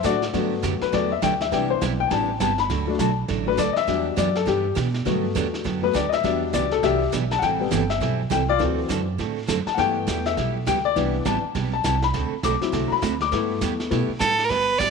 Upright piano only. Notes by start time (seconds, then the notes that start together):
0.04 F#3 A3 D4 F#4 D5
0.33 F#3 A3 B3
0.82 B4
0.93 F#3 A3 B3 D5
1.12 E5
1.23 G5
1.42 E5
1.52 E3 B3 D4 G5
1.70 C5
2.00 G5
2.08 E3 B3 D4 G#5
2.12 A5
2.41 A5
2.60 B5
2.87 F#3 A3 D4
3.00 A5
3.46 F#3 A3 D4 B4
3.59 D5
3.73 D#5
3.77 E5
3.88 F#3 G3 D4
4.18 D5
4.37 A4
4.48 G4
5.05 F#3 A3 B3
5.82 F#3 A3 B3 B4
5.95 D5
6.09 D#5
6.14 E5
6.24 F#3 G3 D4
6.54 D5
6.72 A4
6.83 F#3 G3 D4 G4 E5
7.32 A5
7.39 F#5
7.43 G5
7.60 C3 G3 B3
7.90 E5
8.32 G5
8.49 F4 D5
8.60 E3 F#3 C4
9.67 A5
9.74 E3 A3 F#5
9.78 B3 G5
10.26 E5
10.68 G5
10.85 D5
10.96 E3 B3 D4
11.26 A5
11.73 A5
11.85 A5
12.04 B5
12.44 D6
12.61 F#3 C4 E4
12.88 A#5
12.92 B5
13.22 D6
13.32 A3 B3 E4
13.90 A3 B3 E4